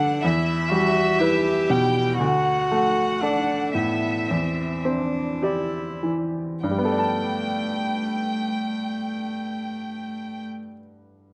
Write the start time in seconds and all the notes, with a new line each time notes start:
Already playing: G2 D3 A3 D4 B4 F#5
0.23 E2 E4 E5
0.70 G3 F#4
1.18 E4 G4 B4
1.69 B2 G5
2.18 D2 F#4 F#5
2.71 A3
3.22 D4 A4 D5
3.74 A2 B3 E5
4.28 E2 C4
4.85 C4 D4
5.42 E4 G4 D5
6.03 E3
6.63 G2 A3 G5
6.71 G3
6.78 B3
6.85 A4
6.92 D5
6.99 A5